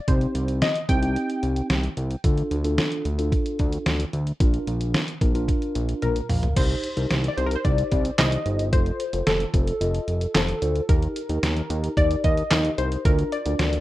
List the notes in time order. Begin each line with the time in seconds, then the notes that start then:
0.08 C2 C4 D#4 G4 C5, kick, closed hi-hat
0.21 closed hi-hat
0.35 C2, closed hi-hat
0.48 closed hi-hat
0.62 D#5, snare, closed hi-hat
0.75 closed hi-hat
0.89 C2 C4 D#4 G4 G5, kick, closed hi-hat
1.02 C4 D#4 G4, closed hi-hat
1.16 closed hi-hat
1.30 closed hi-hat
1.43 C2, closed hi-hat
1.56 closed hi-hat
1.70 C2, snare, closed hi-hat
1.83 closed hi-hat
1.97 C2, closed hi-hat
2.11 closed hi-hat
2.24 D2 D4 F4 A4, kick, closed hi-hat
2.37 closed hi-hat
2.51 D2, closed hi-hat
2.64 D4 F4 A4, closed hi-hat
2.78 snare, closed hi-hat
2.92 closed hi-hat
3.05 D2, closed hi-hat
3.19 D4 F4 A4, closed hi-hat
3.32 kick, closed hi-hat
3.46 closed hi-hat
3.59 D2, kick, closed hi-hat
3.73 closed hi-hat
3.86 D2, snare, closed hi-hat
4.00 closed hi-hat
4.13 D2, closed hi-hat
4.27 closed hi-hat
4.40 A#1 D4 F4 A#4, kick, closed hi-hat
4.54 closed hi-hat
4.67 A#1, closed hi-hat
4.81 closed hi-hat
4.94 snare, closed hi-hat
5.08 closed hi-hat
5.21 A#1 D4 F4 A#4, kick, closed hi-hat
5.35 D4 F4 A#4, closed hi-hat
5.48 kick, closed hi-hat
5.62 closed hi-hat
5.75 A#1, closed hi-hat
5.89 closed hi-hat
6.02 A#1 A#4 A#5, closed hi-hat, high tom
6.16 closed hi-hat
6.29 A#1 F5, mid tom, open hi-hat
6.43 closed hi-hat, floor tom
6.56 C2 D#4 G4 C5, kick, closed hi-hat, crash
6.70 closed hi-hat
6.84 closed hi-hat
6.97 C2 D#4 G4 A#4, closed hi-hat
7.10 C2, snare, closed hi-hat
7.24 closed hi-hat
7.28 D5
7.37 C2 D#4 G4 C5, closed hi-hat
7.46 A#4
7.51 closed hi-hat
7.55 C5
7.65 C2 D#4 G4 C5 D5, kick, closed hi-hat
7.78 closed hi-hat
7.92 C2, kick, closed hi-hat
8.05 closed hi-hat
8.18 C2 D#4 G4 C5 D#5, snare, clap, closed hi-hat
8.32 closed hi-hat
8.46 G1 D#4 G4 C5, closed hi-hat
8.59 closed hi-hat
8.73 F1 F4 A4 C5, kick, closed hi-hat
8.86 closed hi-hat
9.00 closed hi-hat
9.13 F1 F4 A4 C5, closed hi-hat
9.27 F1 A4, snare, closed hi-hat
9.40 closed hi-hat
9.54 F1 F4 A4 C5, kick, closed hi-hat
9.67 closed hi-hat
9.81 F1 F4 A4 D#5, closed hi-hat
9.94 closed hi-hat
10.08 F1, closed hi-hat
10.21 closed hi-hat
10.35 F1 F4 A4 C5, snare, clap, closed hi-hat
10.48 closed hi-hat
10.62 D2 F4 A4 C5, closed hi-hat
10.76 closed hi-hat
10.89 D#2 D#4 G4 A#4, kick, closed hi-hat
11.02 closed hi-hat
11.16 closed hi-hat
11.29 D#2 D#4 G4 A#4, closed hi-hat
11.43 D#2, snare, closed hi-hat
11.57 closed hi-hat
11.70 D#2 D#4 G4 A#4, closed hi-hat
11.84 closed hi-hat
11.97 D#2 D#4 G4 A#4 D5, kick, closed hi-hat
12.11 closed hi-hat
12.24 D#2 D#5, kick, closed hi-hat
12.37 closed hi-hat
12.51 D#2 D#4 G4 A#4, snare, clap, closed hi-hat
12.65 closed hi-hat
12.78 C2 D#4 G4 A#4 C5, closed hi-hat
12.92 closed hi-hat
13.05 D2 D4 F4 A#4, kick, closed hi-hat
13.19 closed hi-hat
13.32 D5, closed hi-hat
13.46 D2 D4 F4 A#4, closed hi-hat
13.59 D2, snare, closed hi-hat
13.73 closed hi-hat